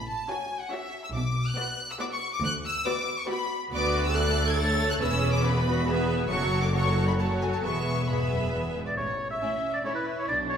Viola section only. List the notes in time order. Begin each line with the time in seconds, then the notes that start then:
0.29 C#4 F#4
0.72 C#4 F#4
1.57 B3 F#4
2.00 B3 F#4
2.86 B3 F#4
3.29 B3 F#4
3.71 B3 F#4
4.14 A3 A4
4.57 A3
5.01 C#4 G#4
5.45 B3 G#4
5.66 F#4
5.88 B3 G#4
6.30 F#3 F#4
6.74 F#3 F#4
7.19 F#3 F#4
7.63 B3 G#4
8.08 B3 G#4
9.42 A3 C#4
9.84 A3 C#4